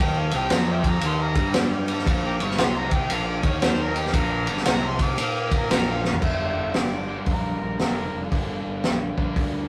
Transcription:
0.00 fingered electric bass D#2, overdriven electric guitar D#3, harmonica G5
0.18 harmonica F5
0.31 fingered electric bass C2, overdriven electric guitar C3, ride
0.38 harmonica G5
0.50 fingered electric bass F2, overdriven electric guitar F3, snare, ride
0.54 harmonica A#5
0.72 harmonica D5 E5 G5
0.84 kick, ride
0.90 harmonica A#5
1.01 fingered electric bass D#2, overdriven electric guitar D#3, ride
1.06 harmonica C6
1.22 harmonica A#5
1.35 fingered electric bass G2, overdriven electric guitar G3, kick, ride
1.54 snare, ride
1.88 ride
1.98 snare
2.07 fingered electric bass A#1, overdriven electric guitar A#2, kick, ride
2.26 harmonica G5 A#5 D6
2.40 fingered electric bass G1, overdriven electric guitar G2, harmonica C#6, ride
2.50 snare
2.58 fingered electric bass C2, overdriven electric guitar C3, harmonica C6, snare, ride
2.78 harmonica A#5
2.91 harmonica G5, kick, ride
3.10 fingered electric bass A#1, overdriven electric guitar A#2, harmonica F5, ride
3.27 harmonica D5
3.43 fingered electric bass D#2, overdriven electric guitar D#3, harmonica C#5, kick, ride
3.62 harmonica C5, snare, ride
3.83 harmonica A#4
3.96 harmonica G4, ride
4.06 snare
4.13 fingered electric bass A#1, overdriven electric guitar A#2, harmonica A#4, kick, ride
4.47 fingered electric bass G1, overdriven electric guitar G2, ride
4.57 snare
4.65 fingered electric bass C2, overdriven electric guitar C3, snare, ride
4.70 harmonica A#5
4.87 harmonica C6
4.99 harmonica D6, kick, ride
5.17 fingered electric bass A#2, overdriven electric guitar A#3, ride
5.51 kick, ride
5.58 harmonica A#4
5.71 fingered electric bass A#1, overdriven electric guitar A#2, snare, ride
5.93 harmonica F5
6.05 snare
6.13 floor tom
6.21 fingered electric bass G1, overdriven electric guitar G2 D3 G3 A#3 D4, harmonica E5, kick, crash
6.56 fingered electric bass G1
6.74 fingered electric bass G1, harmonica D5, snare, open hi-hat
7.07 overdriven electric guitar G2 D3 G3 A#3 D4
7.26 fingered electric bass A#1, kick, open hi-hat
7.31 harmonica A#4
7.61 fingered electric bass A#1
7.79 fingered electric bass F1, overdriven electric guitar G2 D3 G3 A#3 D4, harmonica A#4, snare, open hi-hat
8.14 fingered electric bass F1
8.32 fingered electric bass G1, overdriven electric guitar G2 D3 G3 A#3 D4, kick, open hi-hat
8.66 fingered electric bass G1
8.84 fingered electric bass A#1, snare, open hi-hat
9.17 fingered electric bass A#1, overdriven electric guitar G2 D3 G3 A#3 D4, kick
9.36 fingered electric bass D2, kick, open hi-hat

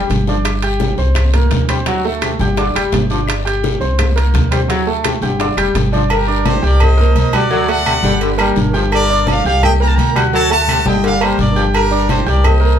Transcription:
Already playing: trombone section G3, grand piano G4 G5 G6
0.09 upright bass G1, low bongo, high conga, high timbale, short guiro
0.27 trombone section F3, grand piano D4 D5 D6, low bongo, short guiro
0.45 high bongo, high conga, high timbale, long guiro, claves
0.62 grand piano G4 G5 G6, high conga, high timbale
0.80 high bongo, high conga, short guiro
0.97 upright bass C2, grand piano C4 C5 C6, high bongo, high conga, short guiro
1.15 high bongo, high conga, low conga, high timbale, long guiro, claves
1.34 grand piano A#3 A#4 A#5, high bongo, high conga, low conga, high timbale
1.51 upright bass D2, high bongo, low bongo, high conga, high timbale, short guiro
1.69 trombone section G3, grand piano C4 C5 C6, high bongo, high conga, high timbale, short guiro, claves
1.86 grand piano F#3 F#4 F#5, trombone section F#3, high bongo, high conga, high timbale, long guiro
2.05 grand piano A3 A4 A5, high conga
2.21 trombone section C3, high bongo, high conga, high timbale, short guiro, claves
2.39 upright bass G1, trombone section D3, grand piano G4 G5 G6, high bongo, high conga, short guiro
2.57 trombone section D3, grand piano D4 D5 D6, high bongo, high conga, high timbale, long guiro
2.75 upright bass F1, trombone section G3, grand piano G4 G5 G6, high bongo, high conga, high timbale, claves
2.92 upright bass G1, high bongo, low bongo, high conga, high timbale, low timbale, short guiro
3.10 trombone section F3, grand piano D4 D5 D6, high bongo, high conga, short guiro
3.28 high bongo, high conga, high timbale, long guiro, claves
3.45 grand piano G4 G5 G6, high conga, high timbale
3.64 high bongo, high conga, short guiro
3.80 upright bass C2, grand piano C4 C5 C6, high bongo, high conga, short guiro
3.99 high bongo, high conga, low conga, high timbale, long guiro, claves
4.16 grand piano A#3 A#4 A#5, high bongo, high conga, high timbale
4.34 upright bass D2, high bongo, low bongo, high conga, high timbale, short guiro
4.51 trombone section G3, grand piano C4 C5 C6, high bongo, high conga, high timbale, short guiro, claves
4.68 grand piano F#3 F#4 F#5, trombone section F#3, high bongo, high conga, high timbale, long guiro
4.86 grand piano A3 A4 A5, high conga
5.04 trombone section C3, high bongo, high conga, high timbale, short guiro, claves
5.21 upright bass G1, trombone section D3, grand piano G4 G5 G6, high bongo, high conga, short guiro
5.40 trombone section D3, grand piano D4 D5 D6, high bongo, high conga, high timbale, long guiro
5.57 upright bass F1, trombone section G3, grand piano G4 G5 G6, high bongo, high conga, high timbale, claves
5.74 upright bass G1, high bongo, low bongo, high conga, high timbale, short guiro
5.93 trombone section F3, grand piano D4 D5 D6, high bongo, high conga, short guiro
6.10 trumpet section G4 A#4, cowbell, high conga, low agogo, long guiro, claves
6.27 grand piano D4 D5 D6, high conga
6.45 trumpet section G4 C5, cowbell, high conga, low agogo, short guiro
6.62 upright bass C2, grand piano G4 G5 G6, high conga, short guiro
6.66 trumpet section A#4 D5
6.80 trumpet section C5 D#5, cowbell, high conga, low conga, low agogo, long guiro, claves
6.97 grand piano A#3 A#4 A#5, high conga, low conga
7.15 upright bass D2, trumpet section C5 D#5, cowbell, high conga, low agogo, short guiro
7.33 trombone section G3, grand piano F#4 F#5 F#6, trumpet section A4 D5, high conga, low agogo, short guiro, claves
7.50 grand piano F#3 F#4 F#5, trombone section F#3, cowbell, high conga, long guiro
7.67 grand piano A3 A4 A5, trumpet section D5 F#5, high conga, low agogo
7.85 trombone section C3, cowbell, high conga, low agogo, short guiro, claves
8.03 upright bass G1, trombone section D3, grand piano G3 G4 G5, cowbell, high conga, short guiro
8.21 trombone section D3, cowbell, high conga, low agogo, long guiro
8.38 trombone section G3, grand piano A#3 A#4 A#5, high conga, low agogo, claves
8.56 upright bass G1, cowbell, high conga, short guiro
8.73 trombone section F3, grand piano G4 G5 G6, cowbell, short guiro
8.92 trumpet section A#4 D5, cowbell, high conga, low agogo, long guiro, claves
9.09 grand piano D4 D5 D6, high conga
9.27 trumpet section D5, cowbell, high conga, low agogo, short guiro
9.31 trumpet section F5
9.45 upright bass C2, grand piano G4 G5 G6, trumpet section D5 F5, high conga, short guiro
9.63 trumpet section D#5 G5, cowbell, high conga, low conga, low agogo, long guiro, claves
9.80 grand piano A#3 A#4 A#5, trumpet section G5 A#5, high conga
9.88 trumpet section A5
9.95 upright bass D2, trumpet section G5 A#5, cowbell, high conga, low agogo, short guiro
10.16 trombone section G3, grand piano F#4 F#5 F#6, high conga, low agogo, short guiro, claves
10.33 grand piano F#3 F#4 F#5, trombone section F#3, trumpet section F#5 A5, cowbell, high conga, long guiro
10.50 grand piano A3 A4 A5, trumpet section F#5 A5, high conga, low agogo
10.68 trombone section C3, cowbell, high conga, low agogo, short guiro, claves
10.85 upright bass G1, trombone section D3, grand piano G3 G4 G5, trumpet section D#5 G5, cowbell, high conga, short guiro
11.04 trombone section D3, trumpet section D5 F5, cowbell, high conga, low agogo, long guiro
11.21 trombone section G3, grand piano A#3 A#4 A#5, trumpet section A4 C5, high conga, low agogo, claves
11.38 upright bass G1, trumpet section A#4 D5, cowbell, high conga, short guiro
11.56 trombone section F3, grand piano G4 G5 G6, cowbell, short guiro
11.74 trumpet section G4 A#4, cowbell, high conga, low agogo, long guiro, claves
11.91 grand piano D4 D5 D6, high conga
12.09 trumpet section G4 C5, cowbell, high conga, low agogo, short guiro
12.26 upright bass C2, grand piano G4 G5 G6, trumpet section A#4 D5, high conga, short guiro
12.44 trumpet section C5 D#5, cowbell, high conga, low conga, low agogo, long guiro, claves
12.60 grand piano A#3 A#4 A#5, high conga

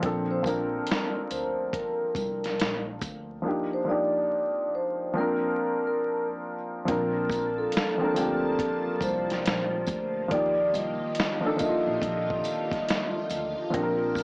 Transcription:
0.00 upright bass A#1, upright piano F3 A#3 C4 D4, kick, closed hi-hat
0.05 upright piano A4
0.31 vibraphone C5
0.43 upright piano F3 A#3 C4, vibraphone A#4, kick, tambourine
0.47 upright piano D4 A#4, closed hi-hat
0.87 closed hi-hat
0.91 snare
1.15 muted upright bass stroke
1.31 upright bass D2, vibraphone C5, closed hi-hat, tambourine
1.73 vibraphone A#4, kick, closed hi-hat
2.01 muted upright bass stroke
2.15 upright bass C2, vibraphone A#4, kick, closed hi-hat, tambourine
2.44 snare, closed hi-hat
2.60 upright bass A#1, snare, closed hi-hat
3.01 upright bass D2, kick, closed hi-hat, tambourine
3.42 upright piano F3 A#3 D4
3.46 upright piano D#4 G4
3.73 vibraphone C5
3.85 upright piano F3 A#3 D4
3.89 upright piano D#4 G4, vibraphone D5
4.75 vibraphone C5
5.14 upright piano F3 A#3 C4
5.18 upright piano D4 A#4, vibraphone A#4
5.87 vibraphone A#4
6.85 upright bass A#1, upright piano F3 A#3 C4, string machine F3 A#3 F4 A5, kick, closed hi-hat
6.89 upright piano D4 A#4, vibraphone A#4
7.30 kick, closed hi-hat, tambourine
7.58 vibraphone A4
7.72 closed hi-hat
7.77 snare
7.98 upright piano F3 A#3 C4, muted upright bass stroke
8.03 upright piano D4 A#4
8.14 upright bass D2, upright piano F3 A#3 C4, closed hi-hat, tambourine
8.18 upright piano D4 G4
8.59 kick, closed hi-hat
8.87 muted upright bass stroke
9.01 upright bass C2, vibraphone C5, kick, closed hi-hat, tambourine
9.30 snare, closed hi-hat
9.46 upright bass A#1, snare, closed hi-hat
9.86 upright bass D2, kick, closed hi-hat, tambourine
10.28 upright bass D#2, string machine D#3 G4, upright piano F3 A#3, vibraphone D5, kick, closed hi-hat
10.32 upright piano D#4 G4
10.74 upright bass C2, closed hi-hat, tambourine
11.15 closed hi-hat
11.20 snare
11.41 upright piano F3 A#3 D4
11.45 upright piano D#4 A4
11.56 upright piano F3 A#3, vibraphone D#5, closed hi-hat, tambourine
11.61 upright piano D#4 E4, kick
11.69 upright piano F4
11.87 upright bass A#1
12.02 upright bass A#1, kick, closed hi-hat
12.30 kick
12.44 closed hi-hat, tambourine
12.72 kick, snare, closed hi-hat
12.89 snare, closed hi-hat
13.30 upright bass D2, closed hi-hat, tambourine
13.70 upright bass A#1, upright piano F3 A#3 C4, string machine F3 A5, kick, closed hi-hat
13.74 upright piano D4 G4, vibraphone A#4
13.83 upright piano A#4
14.15 kick, closed hi-hat, tambourine

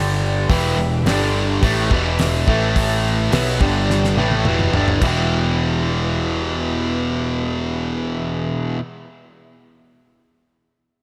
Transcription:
Already playing: picked electric bass G1, overdriven electric guitar G2 D3 G3, string machine D4 G4 D5 G5, reed electric piano G4 D5 G5
0.48 picked electric bass E1, overdriven electric guitar E2 B2 E3, string machine E4 G4 B4 E5, reed electric piano B4 E5 G5, kick, open hi-hat
0.76 picked electric bass E1, overdriven electric guitar E2 B2
1.04 picked electric bass G1, overdriven electric guitar G2 D3 G3, string machine D4 G4 D5 G5, reed electric piano G4 D5 G5, snare, open hi-hat
1.62 picked electric bass A1, overdriven electric guitar A2 E3 A3, reed electric piano G4 B4 E5, string machine G4 B4 E5 G5, kick, open hi-hat
1.90 picked electric bass E1, overdriven electric guitar E2 B2 E3, kick
2.19 reed electric piano G4 B4 E5, snare, open hi-hat
2.47 picked electric bass A1, overdriven electric guitar A2 E3 A3, reed electric piano E4 A4 E5, string machine E4 A4 E5 A5, kick
2.76 kick, open hi-hat
3.31 picked electric bass B1, overdriven electric guitar B2 F#3 B3, reed electric piano G4 B4 E5, snare, open hi-hat
3.59 picked electric bass G1, overdriven electric guitar G2 D3 G3, string machine D4 G4 D5 G5, reed electric piano G4 D5 G5, kick
3.90 snare
4.04 snare
4.15 picked electric bass A1, overdriven electric guitar A2 E3 A3, string machine E4 G4 B4 E5, reed electric piano B4 E5 G5, high tom
4.31 high tom
4.45 picked electric bass E1, overdriven electric guitar E2 B2 E3, mid tom
4.59 mid tom
4.73 picked electric bass G1, overdriven electric guitar G2 D3 G3, floor tom
4.88 floor tom
5.00 picked electric bass E1, overdriven electric guitar E2 B2, string machine E4 G4 B4 E5, reed electric piano B4 E5, kick, crash
5.05 overdriven electric guitar E3, reed electric piano G5

